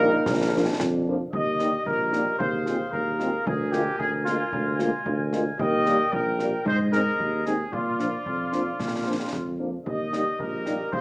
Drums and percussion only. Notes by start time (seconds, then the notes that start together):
0.26 concert bass drum, snare
0.80 concert bass drum, snare
1.33 concert bass drum
1.59 snare
1.86 concert bass drum
2.13 snare
2.40 concert bass drum
2.66 snare
2.93 concert bass drum
3.20 snare
3.47 concert bass drum
3.73 snare
4.00 concert bass drum
4.26 snare
4.53 concert bass drum
4.79 snare
5.06 concert bass drum
5.33 snare
5.59 concert bass drum
5.86 snare
6.13 concert bass drum
6.40 snare
6.66 concert bass drum
6.93 snare
7.19 concert bass drum
7.46 snare
7.73 concert bass drum
8.00 snare
8.26 concert bass drum
8.53 snare
8.80 concert bass drum, snare
9.33 concert bass drum, snare
9.86 concert bass drum
10.13 snare
10.40 concert bass drum
10.66 snare
10.93 concert bass drum